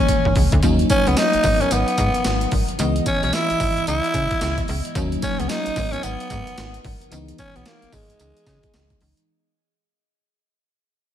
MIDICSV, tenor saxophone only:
0, 0, Header, 1, 2, 480
1, 0, Start_track
1, 0, Tempo, 540541
1, 558, Time_signature, 4, 2, 24, 8
1, 9893, End_track
2, 0, Start_track
2, 0, Title_t, "Tenor saxophone"
2, 0, Program_c, 0, 66
2, 0, Note_on_c, 0, 61, 95
2, 320, Note_off_c, 0, 61, 0
2, 804, Note_on_c, 0, 61, 110
2, 955, Note_on_c, 0, 59, 92
2, 968, Note_off_c, 0, 61, 0
2, 1048, Note_on_c, 0, 63, 110
2, 1061, Note_off_c, 0, 59, 0
2, 1434, Note_on_c, 0, 61, 91
2, 1448, Note_off_c, 0, 63, 0
2, 1527, Note_on_c, 0, 59, 92
2, 1540, Note_off_c, 0, 61, 0
2, 2242, Note_off_c, 0, 59, 0
2, 2728, Note_on_c, 0, 61, 101
2, 2861, Note_off_c, 0, 61, 0
2, 2876, Note_on_c, 0, 61, 90
2, 2966, Note_on_c, 0, 64, 109
2, 2979, Note_off_c, 0, 61, 0
2, 3439, Note_off_c, 0, 64, 0
2, 3444, Note_on_c, 0, 64, 103
2, 4125, Note_off_c, 0, 64, 0
2, 4643, Note_on_c, 0, 61, 99
2, 4789, Note_on_c, 0, 59, 82
2, 4802, Note_off_c, 0, 61, 0
2, 4875, Note_on_c, 0, 63, 108
2, 4889, Note_off_c, 0, 59, 0
2, 5260, Note_on_c, 0, 61, 94
2, 5274, Note_off_c, 0, 63, 0
2, 5356, Note_on_c, 0, 59, 93
2, 5370, Note_off_c, 0, 61, 0
2, 6077, Note_off_c, 0, 59, 0
2, 6564, Note_on_c, 0, 61, 111
2, 6711, Note_on_c, 0, 59, 98
2, 6725, Note_off_c, 0, 61, 0
2, 6807, Note_on_c, 0, 58, 98
2, 6820, Note_off_c, 0, 59, 0
2, 7048, Note_on_c, 0, 56, 87
2, 7061, Note_off_c, 0, 58, 0
2, 8002, Note_off_c, 0, 56, 0
2, 9893, End_track
0, 0, End_of_file